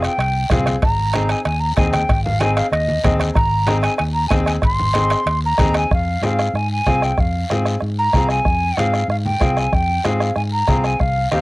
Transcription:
0.03 flute G5, bombo rim, high timbale, short guiro
0.18 fingered electric bass C2, bombo rim, high timbale, long guiro
0.50 fingered electric bass C2, upright piano C4 F4 G#4, bombo low, bombo rim, high conga, low conga, high timbale, short guiro
0.66 bombo rim, high conga, high timbale, short guiro
0.82 fingered electric bass G#1, flute A#5, bombo low, bombo rim, high conga, high timbale, long guiro
0.99 high conga
1.13 upright piano C4 D#4 G#4, bombo rim, high conga, high timbale, short guiro
1.29 flute G#5, bombo rim, high timbale, short guiro
1.45 fingered electric bass D#2, flute G#5, bombo rim, high timbale, long guiro
1.60 flute A#5
1.76 fingered electric bass D#2, upright piano C4 D#4 G#4, flute G#5, bombo low, bombo rim, high conga, high timbale, short guiro
1.93 flute G5, bombo rim, high conga, high timbale, short guiro
2.09 fingered electric bass G#1, bombo low, bombo rim, high conga, high timbale, long guiro
2.24 flute F5, high conga, low conga
2.40 upright piano C4 D#4 G#4, flute G#5, bombo rim, high conga, high timbale, short guiro
2.56 flute F5, bombo rim, high timbale, short guiro
2.71 fingered electric bass D#2, flute D#5, bombo rim, high timbale, long guiro
2.88 high conga
3.04 fingered electric bass D#2, upright piano C4 D#4 G#4, bombo low, bombo rim, high conga, low conga, high timbale, short guiro
3.20 bombo rim, high conga, high timbale, short guiro
3.35 fingered electric bass G#1, flute A#5, bombo low, bombo rim, high conga, high timbale, long guiro
3.51 high conga
3.67 upright piano C4 D#4 G#4, bombo rim, high conga, high timbale, short guiro
3.82 flute G#5, bombo rim, high timbale, short guiro
3.97 fingered electric bass D#2, flute G#5, bombo rim, high timbale, long guiro
4.14 flute A#5
4.28 fingered electric bass D#2, upright piano C4 D#4 G#4, flute G#5, bombo low, bombo rim, high conga, high timbale, low timbale, short guiro
4.46 flute G#5, bombo rim, high timbale, short guiro
4.62 fingered electric bass G#1, flute C6, bombo low, bombo rim, high conga, high timbale, long guiro
4.79 high conga, low conga
4.94 upright piano C4 D#4 G#4, bombo rim, high conga, high timbale, short guiro
5.10 bombo rim, high timbale, short guiro
5.26 fingered electric bass D#2, bombo rim, high timbale, long guiro
5.46 flute A#5
5.58 fingered electric bass D#2, upright piano C4 D#4 G#4, bombo low, bombo rim, high conga, low conga, high timbale, short guiro
5.74 flute G#5, bombo rim, high timbale, short guiro
5.91 fingered electric bass F2, flute F5, bombo low, bombo rim, high conga, long guiro
6.08 high conga
6.22 fingered electric bass G#2, upright piano C4 F4 G#4, flute F5, bombo rim, high conga, short guiro
6.39 bombo rim, short guiro
6.54 fingered electric bass G#2, flute G#5, bombo rim, long guiro
6.72 flute G#5
6.86 fingered electric bass C2, upright piano C4 F4 G#4, bombo low, bombo rim, high conga, short guiro
7.02 flute G5, bombo rim, short guiro
7.18 fingered electric bass F2, flute F5, bombo low, bombo rim, high conga, long guiro
7.35 high conga
7.50 fingered electric bass G#2, upright piano C4 F4 G#4, bombo rim, high conga, short guiro
7.65 bombo rim, short guiro
7.81 fingered electric bass G#2, bombo rim, long guiro
7.99 flute A#5
8.13 fingered electric bass C2, upright piano C4 F4 G#4, bombo low, bombo rim, high conga, short guiro
8.29 flute G#5, bombo rim, short guiro
8.45 fingered electric bass F2, bombo low, bombo rim, high conga, long guiro
8.63 high conga
8.77 fingered electric bass G#2, upright piano C4 F4 G#4, flute F5, bombo rim, high conga, short guiro
8.94 bombo rim, short guiro
9.08 fingered electric bass G#2, flute F5, bombo rim, long guiro
9.25 flute G5, high conga
9.40 fingered electric bass C2, upright piano C4 F4 G#4, bombo low, bombo rim, high conga, short guiro
9.57 flute G#5, bombo rim, short guiro
9.72 fingered electric bass F2, flute G5, bombo low, bombo rim, high conga, long guiro
9.89 high conga
10.04 fingered electric bass G#2, upright piano C4 F4 G#4, flute F5, bombo rim, high conga, short guiro
10.20 bombo rim, short guiro
10.36 fingered electric bass G#2, flute G#5, bombo rim, long guiro
10.52 flute A#5
10.68 fingered electric bass C2, upright piano C4 F4 G#4, bombo low, bombo rim, high conga, short guiro
10.84 flute G#5, bombo rim, short guiro
10.99 fingered electric bass C2, flute F5, bombo low, bombo rim, high conga, long guiro
11.17 high conga
11.31 fingered electric bass D#2, upright piano C4 D#4 G4, flute F5, bombo rim, high conga, short guiro

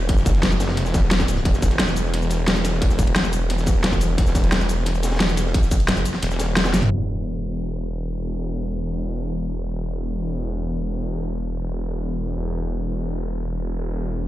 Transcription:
0.09 detuned saw bass F#1, kick, closed hi-hat
0.17 snare, shaker
0.26 kick, closed hi-hat, shaker
0.34 snare, closed hi-hat
0.43 snare, closed hi-hat
0.52 snare, shaker
0.60 snare, closed hi-hat, shaker
0.68 detuned saw bass F1, snare
0.77 snare, closed hi-hat
0.85 snare, shaker
0.94 detuned saw bass E1, kick, snare, closed hi-hat, shaker
1.02 snare
1.11 snare, closed hi-hat
1.20 kick, snare, closed hi-hat, shaker
1.28 snare, closed hi-hat, shaker
1.37 closed hi-hat
1.45 detuned saw bass E1, kick, closed hi-hat
1.54 snare, shaker
1.62 kick, closed hi-hat, shaker
1.71 snare, closed hi-hat
1.79 snare, closed hi-hat
1.88 snare, shaker
1.96 closed hi-hat, shaker
2.06 snare
2.14 snare, closed hi-hat
2.22 shaker
2.31 snare, closed hi-hat, shaker
2.47 snare, closed hi-hat
2.56 shaker
2.64 snare, closed hi-hat, shaker
2.73 snare
2.81 detuned saw bass E1, kick, closed hi-hat
2.90 snare, shaker
2.99 kick, closed hi-hat, shaker
3.07 closed hi-hat
3.16 snare, closed hi-hat
3.24 snare, shaker
3.33 closed hi-hat, shaker
3.50 snare, closed hi-hat
3.58 snare, shaker
3.67 kick, closed hi-hat, shaker
3.84 snare, closed hi-hat
3.92 kick, snare, shaker
4.00 closed hi-hat, shaker
4.18 detuned saw bass E1, kick, closed hi-hat
4.27 snare, shaker
4.35 kick, closed hi-hat, shaker
4.44 snare, closed hi-hat
4.52 snare, closed hi-hat
4.61 snare, shaker
4.69 closed hi-hat, shaker
4.78 snare
4.86 snare, closed hi-hat
4.95 shaker
5.03 snare, closed hi-hat, shaker
5.11 snare, closed hi-hat
5.16 snare, closed hi-hat
5.20 snare, closed hi-hat
5.29 shaker
5.37 snare, closed hi-hat, shaker
5.46 snare
5.54 kick, closed hi-hat
5.63 snare, shaker
5.71 kick, closed hi-hat, shaker
5.80 closed hi-hat
5.88 detuned saw bass F#1, snare, closed hi-hat
5.97 snare, closed hi-hat, shaker
6.05 closed hi-hat, shaker
6.14 snare
6.22 detuned saw bass E1, snare, closed hi-hat
6.31 snare, shaker
6.40 snare, closed hi-hat, shaker
6.57 snare, closed hi-hat
6.65 snare, closed hi-hat, shaker
6.74 detuned saw bass F#1, snare, closed hi-hat, shaker
6.82 closed hi-hat, mid tom
6.91 detuned saw bass E1
12.36 detuned saw bass E1

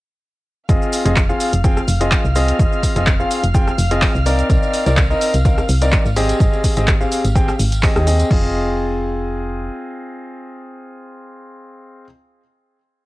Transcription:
0.69 fm bass F1, grand piano C4 F4 G#4 D#5, violin section F5 F6, kick, closed hi-hat, shaker
0.82 shaker
0.93 open hi-hat, shaker
1.05 fm bass F1, grand piano C4 F4 G#4 D#5, closed hi-hat, shaker
1.16 kick, clap, closed hi-hat, shaker
1.29 grand piano C4 F4 G#4 F5, shaker
1.40 open hi-hat, shaker
1.53 fm bass F1, closed hi-hat, shaker
1.64 grand piano C4 F4 G#4 G5, kick, closed hi-hat, shaker
1.77 cross-stick, shaker
1.88 fm bass F1, open hi-hat, shaker
2.01 grand piano C4 F4 G#4 D#5, closed hi-hat, shaker
2.12 kick, clap, closed hi-hat, shaker
2.24 fm bass C2, shaker
2.36 grand piano C4 F4 G#4 D#5, open hi-hat, shaker
2.48 closed hi-hat, shaker
2.59 fm bass F1, grand piano C4, kick, closed hi-hat, shaker
2.72 shaker
2.83 kick, open hi-hat, shaker
2.96 fm bass F1, grand piano C4 F4 G#4 D#5, closed hi-hat, shaker
3.07 kick, clap, closed hi-hat, shaker
3.20 grand piano C4 F4 G#4 F5, shaker
3.31 open hi-hat, shaker
3.44 fm bass F1, closed hi-hat, shaker
3.55 grand piano C4 F4 G#4 G5, kick, closed hi-hat, shaker
3.68 cross-stick, shaker
3.78 fm bass F1, open hi-hat, shaker
3.91 grand piano C4 F4 G#4 D#5, closed hi-hat, shaker
4.02 kick, clap, open hi-hat, shaker
4.15 fm bass C2, shaker
4.26 grand piano C4 D#4 A#4 D5, open hi-hat, shaker
4.39 closed hi-hat, shaker
4.50 fm bass C2, grand piano C4 D#4 A#4 D5, kick, closed hi-hat, tambourine, shaker
4.63 tambourine, shaker
4.74 open hi-hat, shaker
4.86 fm bass C2, grand piano C4 D#4 A#4 D5, closed hi-hat, tambourine, shaker
4.97 kick, clap, closed hi-hat, tambourine, shaker
5.10 grand piano C4 D#4 A#4 D#5, tambourine, shaker
5.21 open hi-hat, shaker
5.34 fm bass C2, closed hi-hat, tambourine, shaker
5.45 grand piano C4 D#4 A#4 F5, kick, closed hi-hat, tambourine, shaker
5.58 cross-stick, tambourine, shaker
5.69 fm bass C2, open hi-hat, shaker
5.82 grand piano C4 D#4 A#4 D5, closed hi-hat, tambourine, shaker
5.92 kick, clap, closed hi-hat, shaker
6.05 fm bass G#1, tambourine, shaker
6.16 grand piano C4 G4 G#4 D#5, open hi-hat, shaker
6.29 closed hi-hat, tambourine, shaker
6.40 fm bass G#1, kick, closed hi-hat, tambourine, shaker
6.53 tambourine, shaker
6.64 kick, open hi-hat, shaker
6.77 fm bass G#1, grand piano C4 G4 G#4 D#5, closed hi-hat, tambourine, shaker
6.87 kick, clap, closed hi-hat, tambourine, shaker
7.01 grand piano C4 G4 G#4 F5, tambourine, shaker
7.12 open hi-hat, shaker
7.25 fm bass G#1, closed hi-hat, tambourine, shaker
7.36 grand piano C4 G4 G#4 G5, kick, closed hi-hat, tambourine, shaker
7.48 cross-stick, tambourine, shaker
7.59 fm bass G#1, open hi-hat, shaker
7.72 closed hi-hat, tambourine, shaker
7.83 grand piano C4 G4 G#4 D#5, kick, clap, open hi-hat, tambourine, shaker
7.96 fm bass D#2, grand piano C4 G4 G#4 D#5, cross-stick, tambourine, shaker
8.07 grand piano C4 G4 G#4 D#5, open hi-hat, shaker
8.19 closed hi-hat, tambourine, shaker
8.31 fm bass F1, grand piano C4 F4 G#4 D#5, kick, crash

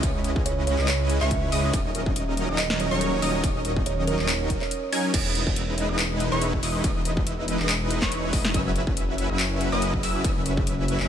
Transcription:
Already playing: harp D#4 G#4 B4 C#5
0.03 detuned saw bass C#2, supersaw synth G#3 C#4 E4 B4 D#5, harp C#4, synth pluck D#6, kick, closed hi-hat, ride
0.15 harp B4
0.24 harp G#4, closed hi-hat
0.36 harp G#4, kick
0.46 kalimba C#5, harp C#5, closed hi-hat
0.57 harp C#5
0.67 harp C#5, kalimba C#5, closed hi-hat
0.79 detuned saw bass C#2, supersaw synth G#3 C#4 E4 B4 D#5, harp C#4, kalimba C#5, synth pluck D#6, clap
0.88 harp C#4, kalimba C#5, clap, closed hi-hat, ride
1.00 harp B4
1.10 harp G#4, closed hi-hat
1.21 detuned saw bass C#2, supersaw synth G#3 C#4 E4 B4 C#5, harp G#4, kalimba E5, synth pluck C#6, clap
1.31 harp C#5, kalimba E5, kick, closed hi-hat
1.43 harp C#5
1.52 detuned saw bass C#2, supersaw synth G#3 C#4 E4 B4 D#5, harp C#5, synth pluck D#6, open hi-hat
1.64 harp C#4
1.73 detuned saw bass D#1, supersaw synth F#3 C#4 D#4 A#4 D#5, harp C#4, synth pluck D#6, kick, closed hi-hat, ride
1.85 harp C#5
1.95 harp A#4, closed hi-hat
2.06 kick
2.16 harp D#5, closed hi-hat
2.28 harp D#5
2.37 harp D#5, closed hi-hat
2.49 detuned saw bass D#1, supersaw synth F#3 C#4 D#4 A#4 D#5, harp C#4, synth pluck D#6
2.58 kalimba D#5, clap, closed hi-hat, ride
2.70 harp C#5, snare
2.80 harp A#4, kalimba C#5, closed hi-hat
2.91 detuned saw bass D#1, supersaw synth F#3 C#4 D#4 A#4 C#5, harp A#4, kalimba C#5, synth pluck C#6
3.01 harp D#5, closed hi-hat
3.13 harp D#5
3.22 detuned saw bass D#1, supersaw synth F#3 C#4 D#4 A#4 D#5, harp D#5, synth pluck D#6, open hi-hat
3.34 harp C#4
3.43 detuned saw bass D#1, supersaw synth F#3 C#4 D#4 A#4 D#5, synth pluck D#6, kick, closed hi-hat, ride
3.55 harp C#5
3.65 harp A#4, closed hi-hat
3.77 harp A#4, kick
3.86 kalimba C#5, harp D#5, closed hi-hat
3.98 harp D#5
4.07 kalimba A#4, harp D#5, closed hi-hat
4.19 detuned saw bass D#1, supersaw synth F#3 C#4 D#4 A#4 D#5, harp C#4, synth pluck D#6, clap
4.29 harp C#4, clap, closed hi-hat, ride
4.40 harp C#5
4.50 harp A#4, kick, closed hi-hat
4.61 harp A#4, kalimba C#5, clap
4.71 harp D#5, closed hi-hat
4.83 harp D#5
4.92 supersaw synth F#3 C#4 D#4 A#4 G#5, harp D#5, synth pluck G#6, open hi-hat
5.04 harp C#4
5.14 detuned saw bass E1, supersaw synth G#3 D#4 E4 B4 D#5, harp D#4, synth pluck D#6, kick, closed hi-hat, ride, crash
5.26 harp D#5
5.35 harp B4, closed hi-hat
5.47 harp B4, kick
5.56 harp E5, closed hi-hat
5.68 harp E5
5.78 harp E5, closed hi-hat
5.89 detuned saw bass E1, supersaw synth G#3 D#4 E4 B4 D#5, harp D#4, synth pluck D#6
5.99 harp D#4, clap, closed hi-hat, ride
6.11 harp D#5
6.20 harp B4, closed hi-hat
6.32 detuned saw bass E1, supersaw synth G#3 D#4 E4 B4 C#5, harp B4, synth pluck C#6
6.42 harp E5, closed hi-hat
6.53 harp E5, kick
6.63 detuned saw bass E1, supersaw synth G#3 D#4 E4 B4 D#5, harp E5, synth pluck D#6, open hi-hat
6.75 harp D#4
6.84 detuned saw bass E1, supersaw synth G#3 D#4 E4 B4 D#5, harp D#4, synth pluck D#6, kick, closed hi-hat, ride
6.96 harp D#5
7.05 harp B4, closed hi-hat
7.17 harp B4, kick
7.27 harp E5, closed hi-hat
7.38 harp E5
7.48 harp E5, closed hi-hat
7.59 detuned saw bass E1, supersaw synth G#3 D#4 E4 B4 D#5, harp D#4, synth pluck D#6, clap
7.69 harp D#4, clap, closed hi-hat, ride
7.81 harp D#5
7.90 harp B4, closed hi-hat
8.02 detuned saw bass E1, supersaw synth G#3 D#4 E4 B4 C#5, harp B4, synth pluck C#6, kick, clap, snare
8.12 harp E5, closed hi-hat
8.24 harp E5
8.33 detuned saw bass E1, supersaw synth G#3 D#4 E4 B4 D#5, synth pluck D#6, kick, open hi-hat
8.45 harp D#4, snare
8.54 detuned saw bass F#1, supersaw synth F#3 C#4 E4 B4 E5, harp C#4, synth pluck E6, kick, closed hi-hat, ride
8.66 harp C#5
8.76 harp B4, closed hi-hat
8.87 harp B4, kick
8.97 harp E5, closed hi-hat
9.09 harp E5
9.18 harp E5, closed hi-hat
9.29 detuned saw bass F#1, supersaw synth F#3 C#4 E4 B4 E5, harp C#4, synth pluck E6
9.39 harp C#4, clap, closed hi-hat, ride
9.51 harp C#5
9.61 harp B4, closed hi-hat
9.72 detuned saw bass F#1, supersaw synth F#3 C#4 E4 B4 D#5, harp B4, synth pluck D#6
9.82 harp E5, closed hi-hat
9.94 harp E5, kick
10.03 detuned saw bass F#1, supersaw synth F#3 C#4 E4 B4 E5, harp E5, synth pluck E6, open hi-hat
10.15 harp C#4
10.24 detuned saw bass F#1, supersaw synth F#3 C#4 E4 B4 E5, harp C#4, synth pluck E6, kick, closed hi-hat, ride
10.36 harp C#5
10.46 harp B4, closed hi-hat
10.57 harp B4, kick
10.67 harp E5, closed hi-hat
10.79 harp E5
10.88 harp E5, closed hi-hat
11.00 detuned saw bass F#1, supersaw synth F#3 C#4 E4 B4 E5, harp C#4, synth pluck E6, clap

